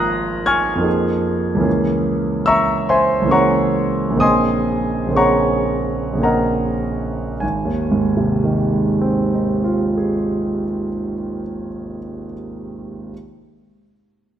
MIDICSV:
0, 0, Header, 1, 2, 480
1, 0, Start_track
1, 0, Tempo, 818554
1, 976, Time_signature, 3, 2, 24, 8
1, 1948, Tempo, 892857
1, 2428, Tempo, 966184
1, 2908, Tempo, 1058201
1, 3388, Tempo, 1165049
1, 6749, End_track
2, 0, Start_track
2, 0, Title_t, "Grand piano"
2, 0, Program_c, 0, 0
2, 0, Control_c, 0, 64, 127
2, 0, Note_on_c, 0, 32, 38
2, 0, Note_on_c, 0, 53, 34
2, 0, Note_on_c, 0, 58, 34
2, 0, Note_on_c, 0, 63, 35
2, 0, Note_on_c, 0, 70, 31
2, 0, Note_on_c, 0, 82, 50
2, 0, Note_on_c, 0, 84, 53
2, 0, Note_on_c, 0, 87, 53
2, 0, Note_on_c, 0, 89, 50
2, 0, Note_on_c, 0, 90, 53
2, 0, Note_on_c, 0, 92, 53
2, 0, Note_on_c, 0, 94, 62
2, 0, Note_on_c, 0, 96, 66
2, 241, Note_off_c, 0, 87, 0
2, 243, Note_off_c, 0, 82, 0
2, 243, Note_off_c, 0, 90, 0
2, 262, Note_off_c, 0, 94, 0
2, 270, Note_off_c, 0, 92, 0
2, 270, Note_on_c, 0, 92, 65
2, 272, Note_off_c, 0, 89, 0
2, 272, Note_on_c, 0, 89, 52
2, 274, Note_on_c, 0, 85, 52
2, 278, Note_on_c, 0, 80, 50
2, 443, Note_on_c, 0, 41, 36
2, 447, Note_off_c, 0, 53, 0
2, 448, Note_off_c, 0, 32, 0
2, 456, Note_on_c, 0, 53, 36
2, 460, Note_off_c, 0, 58, 0
2, 467, Note_off_c, 0, 63, 0
2, 468, Note_on_c, 0, 58, 34
2, 474, Note_off_c, 0, 70, 0
2, 482, Note_on_c, 0, 63, 35
2, 490, Note_off_c, 0, 89, 0
2, 491, Note_off_c, 0, 85, 0
2, 492, Note_on_c, 0, 68, 35
2, 493, Note_off_c, 0, 80, 0
2, 505, Note_off_c, 0, 92, 0
2, 513, Control_c, 0, 64, 0
2, 515, Note_off_c, 0, 84, 0
2, 518, Note_off_c, 0, 96, 0
2, 620, Control_c, 0, 64, 127
2, 908, Note_on_c, 0, 37, 37
2, 919, Note_on_c, 0, 52, 32
2, 925, Note_off_c, 0, 58, 0
2, 930, Note_off_c, 0, 41, 0
2, 934, Note_on_c, 0, 58, 33
2, 937, Note_off_c, 0, 53, 0
2, 944, Note_on_c, 0, 61, 31
2, 949, Note_off_c, 0, 68, 0
2, 951, Note_off_c, 0, 63, 0
2, 957, Note_on_c, 0, 68, 29
2, 985, Control_c, 0, 64, 0
2, 1068, Control_c, 0, 64, 127
2, 1441, Note_on_c, 0, 88, 70
2, 1450, Note_on_c, 0, 76, 55
2, 1450, Note_on_c, 0, 82, 53
2, 1451, Note_on_c, 0, 85, 56
2, 1677, Note_off_c, 0, 76, 0
2, 1677, Note_off_c, 0, 82, 0
2, 1677, Note_off_c, 0, 85, 0
2, 1689, Note_off_c, 0, 88, 0
2, 1696, Note_on_c, 0, 84, 63
2, 1699, Note_on_c, 0, 72, 48
2, 1700, Note_on_c, 0, 76, 49
2, 1700, Note_on_c, 0, 80, 48
2, 1878, Note_off_c, 0, 37, 0
2, 1887, Note_off_c, 0, 52, 0
2, 1887, Note_on_c, 0, 37, 36
2, 1896, Note_on_c, 0, 52, 29
2, 1902, Note_off_c, 0, 58, 0
2, 1908, Note_off_c, 0, 61, 0
2, 1910, Note_on_c, 0, 58, 28
2, 1915, Note_off_c, 0, 68, 0
2, 1921, Note_on_c, 0, 61, 26
2, 1932, Note_off_c, 0, 72, 0
2, 1932, Note_off_c, 0, 80, 0
2, 1933, Note_off_c, 0, 76, 0
2, 1937, Note_on_c, 0, 68, 27
2, 1943, Note_on_c, 0, 85, 60
2, 1947, Note_on_c, 0, 82, 43
2, 1948, Note_off_c, 0, 84, 0
2, 1948, Note_on_c, 0, 73, 43
2, 1949, Note_on_c, 0, 78, 43
2, 2367, Note_on_c, 0, 34, 35
2, 2380, Note_on_c, 0, 49, 25
2, 2383, Note_off_c, 0, 58, 0
2, 2384, Note_off_c, 0, 37, 0
2, 2389, Note_off_c, 0, 52, 0
2, 2391, Note_on_c, 0, 58, 28
2, 2401, Note_off_c, 0, 61, 0
2, 2404, Note_on_c, 0, 60, 28
2, 2405, Note_off_c, 0, 68, 0
2, 2406, Note_off_c, 0, 73, 0
2, 2406, Note_off_c, 0, 82, 0
2, 2407, Note_off_c, 0, 78, 0
2, 2413, Note_on_c, 0, 68, 26
2, 2420, Note_on_c, 0, 87, 63
2, 2425, Note_off_c, 0, 85, 0
2, 2426, Note_on_c, 0, 75, 54
2, 2426, Note_on_c, 0, 80, 52
2, 2429, Note_on_c, 0, 84, 52
2, 2438, Control_c, 0, 64, 0
2, 2527, Control_c, 0, 64, 127
2, 2842, Note_off_c, 0, 34, 0
2, 2850, Note_on_c, 0, 34, 31
2, 2853, Note_off_c, 0, 49, 0
2, 2860, Note_on_c, 0, 49, 27
2, 2861, Note_off_c, 0, 58, 0
2, 2868, Note_on_c, 0, 58, 27
2, 2873, Note_off_c, 0, 60, 0
2, 2880, Note_on_c, 0, 60, 25
2, 2886, Note_off_c, 0, 68, 0
2, 2887, Note_off_c, 0, 75, 0
2, 2887, Note_off_c, 0, 80, 0
2, 2888, Note_off_c, 0, 84, 0
2, 2894, Note_on_c, 0, 68, 27
2, 2900, Note_on_c, 0, 85, 58
2, 2903, Note_on_c, 0, 82, 44
2, 2904, Note_off_c, 0, 87, 0
2, 2904, Note_on_c, 0, 73, 42
2, 2904, Note_on_c, 0, 78, 41
2, 3332, Note_off_c, 0, 34, 0
2, 3338, Note_on_c, 0, 34, 30
2, 3342, Note_off_c, 0, 49, 0
2, 3348, Note_on_c, 0, 49, 22
2, 3352, Note_off_c, 0, 58, 0
2, 3359, Note_on_c, 0, 58, 23
2, 3361, Note_off_c, 0, 60, 0
2, 3367, Note_off_c, 0, 68, 0
2, 3368, Note_off_c, 0, 73, 0
2, 3368, Note_off_c, 0, 78, 0
2, 3368, Note_off_c, 0, 82, 0
2, 3369, Note_on_c, 0, 60, 23
2, 3377, Note_on_c, 0, 68, 23
2, 3384, Note_off_c, 0, 85, 0
2, 3385, Note_on_c, 0, 82, 42
2, 3388, Note_on_c, 0, 78, 35
2, 3389, Note_on_c, 0, 70, 35
2, 3389, Note_on_c, 0, 75, 38
2, 3835, Note_off_c, 0, 34, 0
2, 3840, Note_off_c, 0, 49, 0
2, 3845, Note_off_c, 0, 58, 0
2, 3850, Note_off_c, 0, 60, 0
2, 3854, Note_off_c, 0, 68, 0
2, 3857, Note_off_c, 0, 70, 0
2, 3857, Note_off_c, 0, 75, 0
2, 3857, Note_off_c, 0, 78, 0
2, 3868, Note_on_c, 0, 80, 37
2, 3872, Note_off_c, 0, 82, 0
2, 3874, Note_on_c, 0, 32, 33
2, 3884, Control_c, 0, 64, 0
2, 3969, Note_on_c, 0, 39, 31
2, 3983, Control_c, 0, 64, 127
2, 4079, Note_on_c, 0, 44, 32
2, 4183, Note_on_c, 0, 48, 26
2, 4294, Note_on_c, 0, 51, 28
2, 4415, Note_on_c, 0, 56, 27
2, 4531, Note_on_c, 0, 60, 31
2, 4664, Note_on_c, 0, 63, 27
2, 4787, Note_on_c, 0, 65, 23
2, 4927, Note_on_c, 0, 68, 25
2, 5199, Note_off_c, 0, 80, 0
2, 5205, Note_off_c, 0, 32, 0
2, 5300, Note_off_c, 0, 39, 0
2, 5410, Note_off_c, 0, 44, 0
2, 5514, Note_off_c, 0, 48, 0
2, 5626, Note_off_c, 0, 51, 0
2, 5746, Note_off_c, 0, 56, 0
2, 5863, Note_off_c, 0, 60, 0
2, 5896, Note_off_c, 0, 65, 0
2, 5898, Note_off_c, 0, 68, 0
2, 5899, Note_off_c, 0, 63, 0
2, 6228, Control_c, 0, 64, 0
2, 6749, End_track
0, 0, End_of_file